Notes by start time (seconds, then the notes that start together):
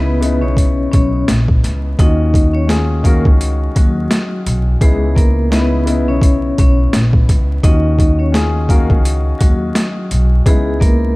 Already playing: C#2 C#3 B3 D#4 E4 B4
0.20 C#3 B3 D#4 E4, closed hi-hat
0.42 B1 C#4 C#5
0.57 kick, closed hi-hat
0.92 B1 C#4 C#5, kick, closed hi-hat
1.28 A#1, snare, closed hi-hat
1.48 kick
1.64 C#2, snare, closed hi-hat
1.99 D#2 D#3 C#4 D#4 F4 F#4 D#5, kick, closed hi-hat
2.34 kick, closed hi-hat
2.53 C#4 C#5
2.67 D#3 C#4 F4 G#4, snare, closed hi-hat
3.03 D#3 A#3 C#4 F#4 A#4 F5, kick, closed hi-hat
3.25 C#2, kick
3.41 closed hi-hat
3.75 D#2 F#3 F#4, kick, closed hi-hat
4.11 snare, closed hi-hat
4.46 B1, closed hi-hat
4.81 C#2 C#3 G#3 B3 D#4 E4 G#4, kick, closed hi-hat
5.15 A#3 A#4, kick, closed hi-hat
5.50 C#3 B3 D#4 E4, snare, closed hi-hat
5.54 B4
5.85 C#3 B3 D#4 E4, closed hi-hat
6.08 B1 C#4 C#5
6.22 kick, closed hi-hat
6.58 B1 C#4 C#5, kick, closed hi-hat
6.93 A#1, snare, closed hi-hat
7.13 kick
7.29 C#2, kick, closed hi-hat
7.63 D#2 D#3 C#4 D#4 F4 F#4 D#5, kick, closed hi-hat
7.99 kick, closed hi-hat
8.19 C#4 C#5
8.31 D#3 C#4 F4 G#4, snare, closed hi-hat
8.68 D#3 A#3 C#4 F#4 A#4 F5, kick, closed hi-hat
8.90 C#2, kick
9.05 closed hi-hat
9.39 D#2 F#3 F#4, kick, closed hi-hat
9.75 snare, closed hi-hat
10.11 B1, closed hi-hat
10.46 C#2 C#3 G#3 B3 D#4 E4 G#4, kick, closed hi-hat
10.80 A#3 A#4, kick, closed hi-hat